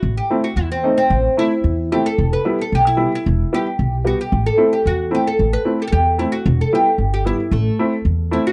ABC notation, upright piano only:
X:1
M:2/4
L:1/16
Q:1/4=112
K:Am
V:1 name="Upright piano"
z2 [A,CE] z3 [A,C^D] z | z2 [A,CE] z3 [A,CE] z | z2 [G,B,E] z3 [G,B,E] z | z2 [G,B,E] z3 [G,B,G] z |
z2 [A,CE] z3 [A,CE] z | z2 [A,CE] z3 [A,CE] z | z2 [G,B,E] z3 [G,B,E] z | z2 [A,CE] z3 [A,CE] z |]